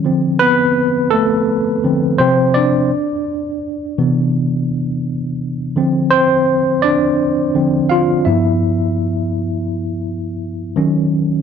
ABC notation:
X:1
M:4/4
L:1/8
Q:"Swing 16ths" 1/4=84
K:Ddor
V:1 name="Tine electric piano"
z [B,B]2 [A,A]2 z c [Dd]- | [Dd]4- [Dd] z3 | z [Cc]2 [Dd]3 [Ff] [Ee]- | [Ee]2 z6 |]
V:2 name="Tine electric piano" clef=bass
[D,F,C]3 z2 [D,F,C] [C,F,C]2 | z3 [C,E,B,]4- [C,E,B,] | [D,F,C]4- [D,F,C] [D,F,C] z [G,,F,B,] | z6 [_E,_G,_D] z |]